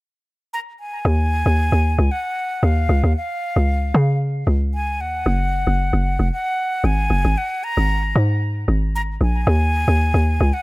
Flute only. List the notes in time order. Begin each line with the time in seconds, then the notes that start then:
0.53 A#5
0.80 G#5
2.11 F#5
2.64 F5
3.17 F5
4.74 G#5
5.01 F#5
6.33 F#5
6.85 G#5
7.38 F#5
7.64 A#5
8.95 A#5
9.22 G#5
10.54 F#5